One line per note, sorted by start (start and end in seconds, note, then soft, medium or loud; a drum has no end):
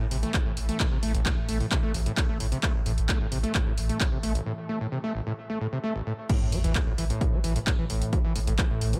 0.00 0.11 A1 medium
0.00 4.46 A2 medium
0.00 4.46 E3 medium
0.11 0.23 A1 loud
0.11 0.18 C3 medium
0.11 open hi-hat loud
0.23 0.32 A3 loud
0.23 closed hi-hat medium
0.34 0.40 A1 medium
0.34 kick loud
0.34 clap loud
0.34 closed hi-hat medium
0.46 0.56 A1 medium
0.46 0.52 A2 medium
0.57 0.68 A1 loud
0.57 open hi-hat loud
0.69 0.78 A3 medium
0.69 closed hi-hat medium
0.80 0.86 A2 medium
0.80 kick loud
0.80 clap loud
0.80 closed hi-hat medium
0.92 1.02 A1 medium
0.92 0.98 C3 medium
1.03 1.14 A1 loud
1.03 1.12 A3 loud
1.03 open hi-hat loud
1.14 1.21 A1 medium
1.14 1.25 A1 medium
1.14 closed hi-hat medium
1.25 1.32 A2 medium
1.25 kick loud
1.25 clap loud
1.25 closed hi-hat medium
1.37 1.48 A1 medium
1.48 1.60 A1 medium
1.48 1.58 A3 medium
1.48 open hi-hat loud
1.60 1.66 A2 medium
1.60 open hi-hat medium
1.71 1.78 C3 medium
1.71 kick loud
1.71 clap loud
1.71 closed hi-hat medium
1.83 1.94 A1 medium
1.83 1.92 A3 loud
1.94 2.01 A1 medium
1.94 2.06 A1 loud
1.94 open hi-hat loud
2.06 2.12 A2 medium
2.06 closed hi-hat medium
2.17 kick loud
2.17 clap loud
2.17 closed hi-hat medium
2.29 2.40 A1 medium
2.29 2.38 A3 medium
2.40 2.52 A1 loud
2.40 2.47 A2 medium
2.40 open hi-hat loud
2.52 2.58 C3 medium
2.52 closed hi-hat medium
2.63 2.73 A3 loud
2.63 kick loud
2.63 clap loud
2.63 closed hi-hat medium
2.75 2.81 A1 medium
2.75 2.85 A1 medium
2.86 2.97 A1 loud
2.86 2.92 A2 medium
2.86 open hi-hat loud
2.98 3.09 A1 medium
2.98 closed hi-hat medium
3.09 3.19 A3 medium
3.09 kick loud
3.09 clap loud
3.09 closed hi-hat medium
3.20 3.31 A1 medium
3.20 3.27 A2 medium
3.32 3.43 A1 loud
3.32 3.38 C3 medium
3.32 open hi-hat loud
3.43 3.53 A3 loud
3.43 closed hi-hat medium
3.54 3.61 A1 medium
3.54 kick loud
3.54 clap loud
3.54 closed hi-hat medium
3.66 3.77 A1 medium
3.66 3.72 A2 medium
3.78 3.89 A1 loud
3.78 open hi-hat loud
3.89 3.98 A3 medium
3.89 closed hi-hat medium
4.00 4.07 A2 medium
4.00 kick loud
4.00 clap loud
4.00 closed hi-hat medium
4.12 4.23 A1 medium
4.12 4.18 C3 medium
4.23 4.35 A1 loud
4.23 4.33 A3 loud
4.23 open hi-hat loud
4.35 4.41 A1 medium
4.35 closed hi-hat medium
4.46 4.53 A2 medium
4.69 4.79 A3 medium
4.81 4.87 A2 medium
4.92 4.99 C3 medium
5.04 5.13 A3 loud
5.15 5.21 A1 medium
5.27 5.33 A2 medium
5.50 5.59 A3 medium
5.61 5.67 A2 medium
5.72 5.79 C3 medium
5.84 5.93 A3 loud
5.95 6.02 A1 medium
6.06 6.13 A2 medium
6.29 6.54 A2 medium
6.29 9.00 A2 medium
6.29 9.00 E3 medium
6.29 kick loud
6.29 closed hi-hat medium
6.29 crash loud
6.29 sub drop medium
6.41 6.52 A1 medium
6.52 6.63 A1 loud
6.52 6.59 G3 loud
6.52 open hi-hat loud
6.64 6.75 A1 medium
6.64 6.73 E3 loud
6.64 closed hi-hat medium
6.75 6.79 A2 medium
6.75 kick loud
6.75 clap loud
6.75 closed hi-hat medium
6.87 6.97 A1 medium
6.87 6.93 A2 medium
6.98 7.10 A1 loud
6.98 7.05 E3 loud
6.98 open hi-hat loud
7.10 7.34 A2 medium
7.10 closed hi-hat medium
7.21 kick loud
7.21 closed hi-hat medium
7.33 7.43 A1 medium
7.33 7.39 G3 loud
7.44 7.56 A1 loud
7.44 7.54 E3 loud
7.44 open hi-hat loud
7.56 7.59 A2 medium
7.56 closed hi-hat medium
7.67 7.73 A2 medium
7.67 kick loud
7.67 clap loud
7.67 closed hi-hat medium
7.79 7.89 A1 medium
7.79 7.85 E3 loud
7.90 8.01 A1 loud
7.90 8.14 A2 medium
7.90 open hi-hat loud
8.02 closed hi-hat medium
8.13 8.19 G3 loud
8.13 kick loud
8.13 closed hi-hat medium
8.24 8.35 A1 medium
8.24 8.34 E3 loud
8.35 8.47 A1 loud
8.35 8.39 A2 medium
8.35 open hi-hat loud
8.47 8.58 A1 medium
8.47 8.53 A2 medium
8.47 closed hi-hat medium
8.58 8.65 E3 loud
8.58 kick loud
8.58 clap loud
8.58 closed hi-hat medium
8.70 8.81 A1 medium
8.70 8.95 A2 medium
8.81 8.93 A1 medium
8.81 open hi-hat loud
8.93 8.99 G3 loud
8.93 closed hi-hat medium